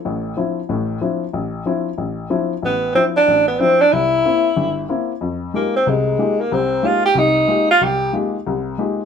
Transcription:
X:1
M:4/4
L:1/8
Q:"Swing" 1/4=186
K:Dm
V:1 name="Tenor saxophone"
z8 | z8 | =B,2 C D2 B, C D | E6 z2 |
[K:Fm] z2 B, C A,3 B, | C2 F G E3 F | G2 z6 |]
V:2 name="Grand piano"
[A,,,A,,]2 [F,CDE] z [A,,,A,,]2 [F,CDE] z | A,,,2 [F,CDE] z A,,,2 [F,CDE] z | A,,,2 [F,CDE] z A,,,2 [F,CDE] z | C,,2 [B,CE] z G,,,2 [B,CE] z |
[K:Fm] F,,2 [A,B,EFG] z [C,,C,]2 [A,B,EFG] z | [C,,C,]2 [A,B,EFG] z [C,,C,]2 [A,B,EFG] z | C,,2 [A,B,EFG] z [C,,C,]2 [A,B,EFG] z |]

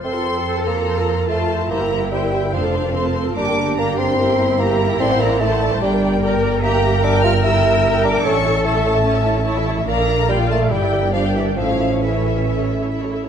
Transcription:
X:1
M:4/4
L:1/16
Q:1/4=145
K:F
V:1 name="Violin section"
c'6 b6 a4 | b4 g4 f6 z2 | d'4 b2 c'6 b4 | c'2 b2 a4 g6 z2 |
[K:Aphr] b4 d'2 f'2 e'6 d'2 | ^c'4 a8- a2 z2 | b4 g2 a2 g4 f2 e2 | f4 e8 z4 |]
V:2 name="Violin section"
c' a c' a c' a c' a c' a c' a c' a c' a | e g e g e g e g c' a c' a c' a c' a | b g b g b g b g b g b g b g b g | a ^f a f a f a f b g b g b g b g |
[K:Aphr] b g b g b g b g b g b g b g b g | a e a e a e a e a e a e a e a e | f d f d f d f d g d g d g d g d | e ^c e c e c e c e c e c e c e c |]
V:3 name="Viola section"
[Ac] [FA] [Ac] [FA] [Ac] [FA] [Ac] [FA] [Ac] [FA] [Ac] [FA] [Ac] [FA] [Ac] [FA] | [Gc] [EB] [Gc] [EB] [Gc] [EB] [Gc] [EB] [Ac] [FA] [Ac] [FA] [Ac] [FA] [Ac] [FA] | [GB] [GB] [GB] [GB] [GB] [GB] [GB] [GB] [GB] [GB] [GB] [GB] [GB] [GB] [GB] [GB] | [Ad] c [Ad] c [Ad] c [Ad] c [Gd] B [Gd] B [Gd] B [Gd] B |
[K:Aphr] [Ge] [Bg] [Ge] [Bg] [Ge] [Bg] [Ge] [Bg] [Ge] [Bg] [Ge] [Bg] [Ge] [Bg] [Ge] [Bg] | [E^c] [Ae] [Ec] [Ae] [Ec] [Ae] [Ec] [Ae] [Ec] [Ae] [Ec] [Ae] [Ec] [Ae] [Ec] [Ae] | [Bd] [Af] [Bd] [Af] [Bd] [Af] [Bd] [Af] [Gd] [Bg] [Gd] [Bg] [Gd] [Bg] [Gd] [Bg] | [EA] [EA] [EA] [EA] [EA] [EA] [EA] [EA] [EA] [EA] [EA] [EA] [EA] [EA] [EA] [EA] |]
V:4 name="Cello section"
A12 F4 | E8 D4 C4 | B,4 D4 E8- | E8 D4 B4 |
[K:Aphr] G4 B12 | A8 ^C4 E4 | D4 F4 E4 D4 | ^C12- C2 z2 |]
V:5 name="Bassoon"
C6 B,6 A,4 | B,4 G,4 F,6 z2 | D4 B,2 C6 B,4 | C2 B,2 A,4 G,6 z2 |
[K:Aphr] B,4 D2 F2 E6 D2 | ^C4 A,8- A,2 z2 | B,4 G,2 A,2 G,4 F,2 E,2 | F,4 E,8 z4 |]
V:6 name="Double bass section" clef=bass
F,,16 | G,,,8 F,,,8 | G,,,16 | A,,,8 G,,,8- |
[K:Aphr] G,,,16 | A,,,16 | B,,,8 G,,,8 | A,,,12- A,,,2 z2 |]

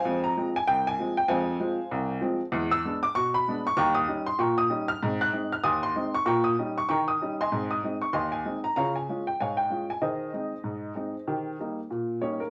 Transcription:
X:1
M:2/4
L:1/16
Q:"Swing 16ths" 1/4=96
K:Ab
V:1 name="Upright piano"
[cfa] b2 a g a2 g | [cfa]6- [cfa] z | z =e'2 =d' _d' =b2 d' | [gbd'] e'2 c' [gbd'] e'2 f' |
z _g'2 f' [ac'e'] c'2 d' | [gbd'] e'2 d' [gbd'] e'2 [eac']- | [eac'] e'2 d' [eac'] a2 b | [dfb] a2 g [dfa] g2 a |
[Ace]8- | [Ace]4 z2 [Dd] [B,B] |]
V:2 name="Upright piano" clef=bass
[F,,A,]2 [F,A,C]2 C,,2 [F,A,C]2 | [F,,A,]2 [F,A,C]2 C,,2 [F,A,C]2 | [=E,,^G,]2 [G,=B,=D]2 =B,,2 [G,B,D]2 | [E,,G,]2 [G,DE]2 B,,2 [G,DE]2 |
[A,,C]2 [A,CE]2 E,,2 [A,CE]2 | B,,2 [G,DE]2 E,2 [G,DE]2 | [A,,C]2 [A,CE]2 E,,2 [A,CE]2 | [D,F]2 [A,DF]2 A,,2 [A,DF]2 |
E,2 [A,CE]2 A,,2 [A,CE]2 | [E,G]2 [G,B,E]2 B,,2 [G,B,E]2 |]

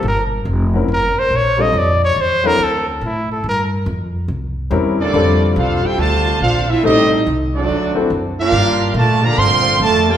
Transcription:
X:1
M:4/4
L:1/8
Q:"Swing" 1/4=141
K:F
V:1 name="Trumpet"
B z3 B c _d _e | d _d c B A C E A | B z6 z | z8 |
z8 | z8 |]
V:2 name="Trumpet section"
z8 | z8 | z6 z [CFAd]- | [CFAd]2 [DAcf] [EAcg] [Fcda]2 [DAcf] [CFAe] |
[CGA_e]2 z [C_GAd]3 z [D=GBf]- | [DGBf]2 [FBda] [Gdfb] [Bfgc']2 [FBda] [FBdg] |]
V:3 name="Grand piano"
z3 [_G,C_DEB] z3 [=G,C=DFA] | z3 [_G,CDEA] z4 | z6 [G,C_DEB] z | [G,CDFA]4- [G,CDFA] z3 |
[A,C_EGA] z4 [CD=E^FA] z2 | z8 |]
V:4 name="Trombone section"
z8 | z8 | z6 z [D,A,D]- | [D,A,D]2 [CDF] G [C,D,A,]2 [CDF] E |
[G,C_E]2 z [_G,A,D]3 z [B,DF]- | [B,DF]2 A, [D,F,B,] [D,F,C]2 A, [B,DG] |]
V:5 name="Upright bass" clef=bass
G,,,2 F,,,2 _G,,, z B,,,2 | F,,2 E,,2 D,,2 A,,2 | G,,2 F,,2 C,,2 E,, z | F,,2 C,, z D,,2 B,,,2 |
A,,, z C,,2 D,, z ^F,,2 | G,,2 B,,2 G,,2 F,,2 |]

